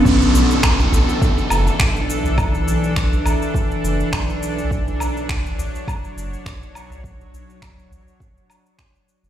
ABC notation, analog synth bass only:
X:1
M:4/4
L:1/16
Q:"Swing 16ths" 1/4=103
K:Edor
V:1 name="Analog synth bass" clef=bass
B,,, z B,,,2 z B,,, A,,, z3 F,,, z B,,,3 z | B,,, z B,,,2 z B,,, A,,, z3 F,,, z B,,,3 z | B,,, z B,,,2 z B,,, A,,, z3 F,,, z B,,,3 z | B,,, z B,,,2 z B,,, A,,, z8 F,,, |]